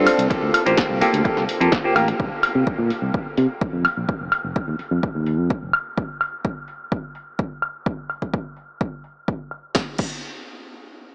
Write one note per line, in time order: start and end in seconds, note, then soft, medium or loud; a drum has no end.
0.00 0.27 C4 loud
0.00 0.27 D4 medium
0.00 0.28 F4 medium
0.00 0.28 A4 loud
0.07 muted fingered electric bass stroke soft
0.07 open hi-hat loud
0.07 high woodblock medium
0.18 0.26 C2 medium
0.18 closed hi-hat medium
0.30 0.63 A#3 medium
0.30 0.63 F4 medium
0.30 0.63 G4 medium
0.30 0.64 A4 medium
0.30 kick loud
0.30 closed hi-hat soft
0.42 0.50 D2 loud
0.54 open hi-hat loud
0.54 high woodblock medium
0.66 0.74 A1 medium
0.66 0.98 A#3 medium
0.66 0.98 F4 medium
0.66 0.99 G4 medium
0.66 0.99 C5 loud
0.66 closed hi-hat medium
0.77 kick loud
0.77 snare loud
0.77 closed hi-hat medium
0.90 1.01 C2 medium
1.01 1.22 A#3 medium
1.01 1.22 F4 medium
1.01 1.22 G4 medium
1.01 1.22 A4 medium
1.01 muted fingered electric bass stroke soft
1.01 open hi-hat loud
1.13 1.21 D2 medium
1.13 closed hi-hat medium
1.25 1.44 A#3 medium
1.25 1.44 F4 medium
1.25 1.44 G4 medium
1.25 1.44 A4 medium
1.25 kick loud
1.25 closed hi-hat soft
1.37 1.44 C2 medium
1.37 snare soft
1.49 open hi-hat loud
1.60 1.68 F2 medium
1.60 1.72 A#3 medium
1.60 1.72 F4 medium
1.60 1.72 G4 medium
1.60 1.72 A4 medium
1.60 closed hi-hat medium
1.72 kick loud
1.72 snare loud
1.72 closed hi-hat soft
1.84 1.94 A#3 medium
1.84 1.94 F4 medium
1.84 1.94 G4 medium
1.84 1.94 C5 loud
1.96 2.11 A1 medium
1.96 2.08 A#3 medium
1.96 2.08 F4 medium
1.96 2.08 G4 medium
1.96 2.08 A#4 medium
1.96 open hi-hat loud
1.96 high woodblock medium
2.08 closed hi-hat medium
2.20 2.27 C2 loud
2.20 kick loud
2.43 open hi-hat loud
2.43 high woodblock medium
2.55 2.62 C3 medium
2.67 kick loud
2.78 2.89 A#2 medium
2.90 muted fingered electric bass stroke soft
2.90 open hi-hat medium
3.02 3.10 C2 medium
3.14 kick loud
3.26 muted fingered electric bass stroke soft
3.37 3.45 C3 medium
3.37 open hi-hat loud
3.61 kick loud
3.73 3.85 F2 medium
3.85 muted fingered electric bass stroke soft
3.85 open hi-hat loud
3.85 high woodblock medium
3.97 4.04 A#1 medium
4.09 muted fingered electric bass stroke soft
4.09 kick loud
4.21 4.28 F1 medium
4.32 open hi-hat loud
4.32 high woodblock medium
4.44 4.52 F1 medium
4.56 kick loud
4.68 4.79 D#2 loud
4.79 muted fingered electric bass stroke soft
4.79 open hi-hat medium
4.91 4.99 F2 medium
5.03 kick loud
5.15 5.39 D#2 medium
5.26 open hi-hat loud
5.39 5.50 F2 medium
5.50 muted fingered electric bass stroke soft
5.50 kick loud
5.63 5.70 F1 medium
5.73 open hi-hat loud
5.73 high woodblock medium
5.98 kick loud
6.21 open hi-hat loud
6.21 high woodblock medium
6.45 kick loud
6.68 open hi-hat medium
6.92 kick loud
7.15 open hi-hat loud
7.39 kick loud
7.62 open hi-hat medium
7.62 high woodblock medium
7.86 kick loud
8.10 open hi-hat loud
8.10 high woodblock medium
8.22 kick medium
8.34 kick loud
8.57 open hi-hat loud
8.81 kick loud
9.04 open hi-hat loud
9.28 kick loud
9.51 open hi-hat medium
9.51 high woodblock medium
9.75 kick loud
9.75 snare medium
9.98 kick loud
9.98 crash medium